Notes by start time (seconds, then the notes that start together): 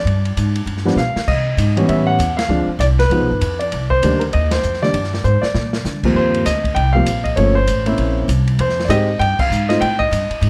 Already playing: D5
0.05 G2, ride
0.25 ride
0.37 G#2, hi-hat pedal, ride
0.56 ride
0.66 G2, ride
0.77 snare
0.85 F3 G3 B3 D4, snare
0.96 B2 F5, snare, hi-hat pedal
1.16 muted upright bass stroke, snare
1.28 C3 D#5, kick, crash
1.57 G#2, hi-hat pedal, ride
1.76 E3 G3 B3 C#4, ride
1.89 A2 E5, ride
2.07 F#5
2.19 E2, hi-hat pedal, ride
2.37 F5, snare, ride
2.49 D2 F3 G#3 C4 D4
2.67 muted upright bass stroke
2.79 C2 D5, hi-hat pedal, ride
2.99 B4, snare, ride
3.10 C#2 F3 G#3 B3 D#4, ride
3.20 B1
3.31 G#1
3.41 F2, hi-hat pedal, ride
3.59 D5, ride
3.72 C2, ride
3.90 C5, kick
4.02 D2 D#3 G3 A#3 D4, hi-hat pedal, ride
4.19 A#4, ride
4.33 D#2 D#5, ride
4.51 C5, snare, ride
4.63 F2, hi-hat pedal
4.74 snare
4.82 D#3 G3 A#3 D4 D5, snare
4.93 G2, ride
5.04 snare
5.14 snare
5.24 G#2 C5, hi-hat pedal
5.42 D5, muted upright bass stroke, snare
5.54 A#2, snare
5.73 snare
5.85 D3, snare, hi-hat pedal
6.03 D#2 F3 G3 A#3 C4, kick, crash
6.14 G2 C5
6.34 ride
6.45 D2 D#5, snare, hi-hat pedal, ride
6.64 kick, ride
6.75 C2 G5, ride
6.93 F3 G3 A#3 C4 F5
7.06 A#1, hi-hat pedal, ride
7.24 D#5, kick, ride
7.36 G1 F3 A3 A#3 C#4 C#5, ride
7.55 C5
7.67 A1, hi-hat pedal, ride
7.86 A#3 C4 C#4 E4, ride
7.98 A#1, ride
8.28 C2, hi-hat pedal, ride
8.47 ride
8.59 F2 C5, ride
8.69 snare
8.80 snare
8.85 G#2 D5
8.89 G#3 C4 D#4 G4 D#5, hi-hat pedal, ride
9.19 G2 G5, ride
9.39 F5, muted upright bass stroke, kick, crash
9.50 G#2, hi-hat pedal
9.69 A3 C4 D#4 F4 D#5, snare, ride
9.81 A2 G5, ride
9.99 D#5, kick
10.11 G2, hi-hat pedal, ride
10.30 muted upright bass stroke, ride
10.41 G#2, ride